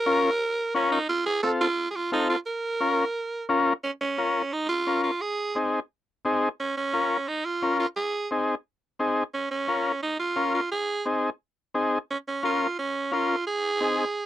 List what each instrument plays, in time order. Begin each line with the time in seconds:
Already playing: alto saxophone A#4
0.06 transistor combo organ C#4 F4 A#4
0.74 transistor combo organ C#4 F4 A#4, alto saxophone C#4
0.92 alto saxophone D#4
1.09 alto saxophone F4
1.26 alto saxophone G#4
1.43 transistor combo organ C4 F4 A4, alto saxophone A4
1.61 alto saxophone F4
1.91 alto saxophone G#4
1.95 alto saxophone F4
2.12 transistor combo organ C4 F4 A4, alto saxophone D#4
2.30 alto saxophone F4
2.46 alto saxophone A#4
2.80 transistor combo organ C#4 F4 A#4
3.49 transistor combo organ C#4 F4 A#4
3.84 alto saxophone C#4
4.01 alto saxophone C#4
4.18 transistor combo organ C#4 F4 A#4
4.53 alto saxophone D#4
4.69 alto saxophone F4
4.87 transistor combo organ C#4 F4 A#4
5.04 alto saxophone F4
5.21 alto saxophone G#4
5.55 transistor combo organ C4 D#4 G#4
6.25 transistor combo organ C4 D#4 G#4
6.60 alto saxophone C#4
6.77 alto saxophone C#4
6.93 transistor combo organ C#4 F4 A#4
7.28 alto saxophone D#4
7.45 alto saxophone F4
7.62 transistor combo organ C#4 F4 A#4
7.79 alto saxophone F4
7.96 alto saxophone G#4
8.31 transistor combo organ C4 D#4 G#4
8.99 transistor combo organ C4 D#4 G#4
9.34 alto saxophone C#4
9.51 alto saxophone C#4
9.68 transistor combo organ C#4 F4 A#4
10.03 alto saxophone D#4
10.19 alto saxophone F4
10.36 transistor combo organ C#4 F4 A#4
10.54 alto saxophone F4
10.72 alto saxophone G#4
11.05 transistor combo organ C4 D#4 G#4
11.74 transistor combo organ C4 D#4 G#4
12.10 alto saxophone C#4
12.28 alto saxophone C#4
12.43 transistor combo organ C#4 F4 A#4, alto saxophone F4
12.79 alto saxophone C#4
13.11 transistor combo organ C#4 F4 A#4, alto saxophone F4
13.47 alto saxophone G#4
13.80 transistor combo organ C4 D#4 G#4